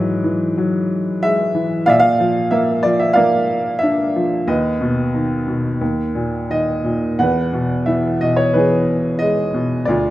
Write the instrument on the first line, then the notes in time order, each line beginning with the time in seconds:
grand piano
Already playing: G#2 E3 F#3 E4 B4
0.24 E3
0.58 F#3
1.23 G#3 E5
1.55 E3
1.86 A#2 D5 E5 F5
2.00 F5
2.20 F3
2.51 A#3 E5
2.83 F3 D5
3.00 E5
3.13 A#3 D5 F5
3.79 E5
3.83 D4
4.16 F3
4.47 D#2 B4 D#5
4.81 B2
5.14 D#3
5.48 B2
5.81 D#2
6.15 A#2
6.50 D#3 D#5
6.84 A#2
7.19 E2 B4 F#5
7.53 B2
7.86 E3 E5
8.21 B2 D#5
8.36 C#5
8.53 E3 G#4 B4
9.19 G#3 D#5
9.54 B2
9.85 D2 F4 D5